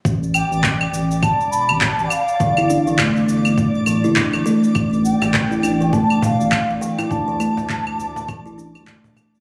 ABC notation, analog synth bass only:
X:1
M:4/4
L:1/16
Q:"Swing 16ths" 1/4=102
K:Gmix
V:1 name="Analog synth bass" clef=bass
A,,,2 z A,,,2 z A,,,2 z E,,,2 A,,, z A,,, z2 | G,,,2 z G,,,2 z G,,,2 z D,,,2 G,,, z G,,, z2 | A,,,2 z A,,,2 z A,,,2 z E,,,2 A,,, z A,,, z2 | D,,2 z D,,2 z D,,2 z A,,,2 D,, z D,, z2 |]